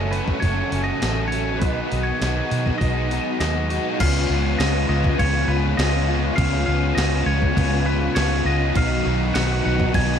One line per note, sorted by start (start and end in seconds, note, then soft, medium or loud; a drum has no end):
0.00 0.20 F#1 loud
0.00 0.12 F#2 medium
0.00 0.41 C#3 medium
0.00 0.16 F#3 medium
0.00 0.65 F#3 medium
0.00 0.14 A3 medium
0.00 0.41 A3 medium
0.00 0.13 C#4 medium
0.00 0.12 F#4 medium
0.00 0.12 A4 medium
0.00 1.59 A4 medium
0.00 1.59 C#5 medium
0.00 0.14 D#5 medium
0.00 3.97 F#5 medium
0.00 1.59 C#6 medium
0.11 0.44 A3 soft
0.11 0.44 C#4 medium
0.11 1.31 F#4 medium
0.11 0.44 A4 medium
0.11 0.43 B4 medium
0.11 open hi-hat soft
0.16 0.43 F#3 soft
0.28 kick medium
0.28 snare soft
0.40 0.61 F#1 loud
0.40 1.02 F#2 loud
0.40 1.03 C#3 medium
0.40 0.74 F#3 loud
0.40 0.83 C#5 loud
0.40 kick medium
0.40 open hi-hat medium
0.45 0.73 A3 loud
0.45 0.72 C#4 loud
0.45 0.71 A4 loud
0.72 0.91 F#1 medium
0.72 1.01 F#3 medium
0.72 1.03 A3 medium
0.72 1.04 C#4 medium
0.72 1.04 A4 medium
0.72 open hi-hat medium
0.84 1.27 D#5 loud
1.01 1.62 A1 medium
1.01 1.60 C#3 medium
1.01 1.34 F#3 medium
1.01 1.33 A3 medium
1.01 snare loud
1.01 open hi-hat medium
1.05 1.32 C#4 medium
1.05 1.31 A4 medium
1.28 1.61 C#5 loud
1.32 1.62 F#3 medium
1.32 1.61 A3 medium
1.32 1.61 C#4 medium
1.32 1.62 F#4 medium
1.32 1.60 A4 medium
1.32 open hi-hat medium
1.59 1.80 B1 loud
1.59 2.22 B2 medium
1.59 1.91 D#3 medium
1.59 3.98 G#4 medium
1.59 2.07 B4 medium
1.59 3.99 D#5 medium
1.59 3.99 B5 medium
1.59 kick loud
1.59 open hi-hat medium
1.64 2.22 F#3 medium
1.64 1.94 B3 medium
1.64 1.93 D#4 medium
1.64 1.91 F#4 medium
1.92 2.11 B1 medium
1.92 3.41 D#3 medium
1.92 2.23 B3 medium
1.92 2.24 D#4 medium
1.92 2.25 F#4 medium
1.92 open hi-hat medium
2.03 2.78 C#5 medium
2.21 2.40 B1 loud
2.21 2.78 B2 medium
2.21 2.81 F#3 medium
2.21 2.54 B3 medium
2.21 snare loud
2.21 open hi-hat medium
2.25 2.52 D#4 medium
2.25 2.51 F#4 medium
2.51 2.70 B2 medium
2.51 2.82 B3 medium
2.51 2.82 D#4 medium
2.51 2.83 F#4 medium
2.51 open hi-hat medium
2.66 kick medium
2.66 snare soft
2.78 3.18 B1 medium
2.78 3.41 B2 medium
2.78 3.40 F#3 loud
2.78 3.40 G#3 medium
2.78 3.39 D#5 medium
2.78 kick medium
2.78 open hi-hat medium
2.83 3.13 B3 loud
2.83 3.12 D#4 medium
2.83 3.10 F#4 loud
3.11 3.39 F#3 medium
3.11 3.41 B3 medium
3.11 3.42 D#4 medium
3.11 3.42 F#4 medium
3.11 open hi-hat medium
3.40 3.78 D#2 medium
3.40 3.98 B2 medium
3.40 3.99 F#3 medium
3.40 4.01 G#3 medium
3.40 3.71 B3 medium
3.40 3.70 D#4 medium
3.40 3.68 F#4 medium
3.40 4.00 D#5 medium
3.40 snare loud
3.40 open hi-hat medium
3.70 4.00 B3 medium
3.70 3.99 D#4 medium
3.70 3.98 F#4 medium
3.70 open hi-hat soft
3.99 4.26 C#2 medium
3.99 4.58 C#3 medium
3.99 4.32 G#3 medium
3.99 4.30 B3 medium
3.99 8.73 F4 medium
3.99 4.29 F4 loud
3.99 8.73 C#5 medium
3.99 4.58 F5 medium
3.99 8.73 G#5 medium
3.99 10.19 B5 medium
3.99 kick loud
3.99 crash loud
3.99 crash medium
4.29 4.55 C#2 medium
4.29 4.59 G#3 medium
4.29 4.60 B3 medium
4.29 4.61 F4 medium
4.58 4.85 C#2 loud
4.58 5.18 C#3 medium
4.58 4.91 G#3 medium
4.58 4.89 B3 medium
4.58 4.87 F4 medium
4.58 4.88 D#5 loud
4.58 snare loud
4.58 crash medium
4.88 5.15 C#2 medium
4.88 5.19 G#3 medium
4.88 5.20 B3 medium
4.88 5.20 F4 medium
4.88 5.19 D#5 medium
5.04 kick medium
5.04 snare soft
5.19 5.45 C#2 loud
5.19 5.76 C#3 loud
5.19 5.50 G#3 loud
5.19 5.49 B3 loud
5.19 5.47 F4 loud
5.19 5.50 C#5 medium
5.19 kick medium
5.19 crash medium
5.48 5.74 C#2 medium
5.48 5.77 G#3 medium
5.48 5.79 B3 medium
5.48 5.79 F4 medium
5.48 5.79 B4 medium
5.77 6.29 C#2 loud
5.77 6.36 C#3 medium
5.77 6.09 G#3 medium
5.77 6.10 B3 medium
5.77 6.07 F4 medium
5.77 6.35 D#5 loud
5.77 snare loud
5.77 crash medium
6.08 6.37 G#3 medium
6.08 6.39 B3 medium
6.08 6.38 F4 medium
6.36 6.63 C#2 loud
6.36 6.96 C#3 medium
6.36 6.68 G#3 loud
6.36 6.68 B3 loud
6.36 6.64 F5 loud
6.36 kick loud
6.36 crash medium
6.40 6.66 F4 loud
6.54 snare soft
6.66 6.93 C#2 loud
6.66 6.97 G#3 medium
6.66 6.98 B3 medium
6.66 6.99 F4 medium
6.66 6.95 F5 medium
6.95 7.23 C#2 loud
6.95 7.55 C#3 medium
6.95 7.28 G#3 medium
6.95 7.28 B3 medium
6.95 7.26 D#5 loud
6.95 snare loud
6.95 crash medium
7.00 7.25 F4 medium
7.26 7.52 C#2 loud
7.26 7.56 G#3 medium
7.26 7.57 B3 medium
7.26 7.57 F4 medium
7.26 7.88 C#5 medium
7.42 kick medium
7.56 8.08 C#2 loud
7.56 8.15 C#3 loud
7.56 7.88 G#3 loud
7.56 7.88 B3 loud
7.56 7.85 F4 loud
7.56 kick loud
7.56 crash medium
7.86 8.15 G#3 medium
7.86 8.17 B3 medium
7.86 8.18 F4 medium
7.86 8.17 B4 medium
8.15 8.42 C#2 loud
8.15 8.74 C#3 medium
8.15 8.48 G#3 medium
8.15 8.47 B3 medium
8.15 8.45 F4 medium
8.15 8.46 C#5 loud
8.15 snare loud
8.15 crash medium
8.45 8.71 C#2 medium
8.45 8.76 G#3 medium
8.45 8.77 B3 medium
8.45 8.74 F4 medium
8.45 8.76 D#5 loud
8.75 9.01 B1 loud
8.75 9.35 B2 loud
8.75 9.33 D#3 loud
8.75 9.07 F#3 loud
8.75 9.07 B3 loud
8.75 9.04 D#4 loud
8.75 10.19 F#4 medium
8.75 10.19 D#5 medium
8.75 9.34 F5 loud
8.75 10.19 A#5 medium
8.75 kick loud
8.75 crash medium
9.05 9.31 B1 loud
9.05 9.35 F#3 medium
9.05 9.36 B3 medium
9.05 9.36 D#4 medium
9.05 10.19 F#4 medium
9.34 9.61 B1 loud
9.34 9.93 D#3 medium
9.34 9.66 F#3 medium
9.34 9.65 B3 medium
9.34 9.63 D#4 loud
9.34 9.64 F#5 loud
9.34 snare loud
9.34 crash medium
9.64 9.91 B1 medium
9.64 9.94 F#3 medium
9.64 9.95 B3 medium
9.64 9.95 D#4 medium
9.64 9.95 F#5 loud
9.80 kick medium
9.80 snare soft
9.94 10.19 B1 loud
9.94 10.19 B2 loud
9.94 10.19 D#3 loud
9.94 10.19 F#3 loud
9.94 10.19 B3 loud
9.94 10.19 D#4 loud
9.94 10.19 G#5 loud
9.94 kick loud
9.94 crash medium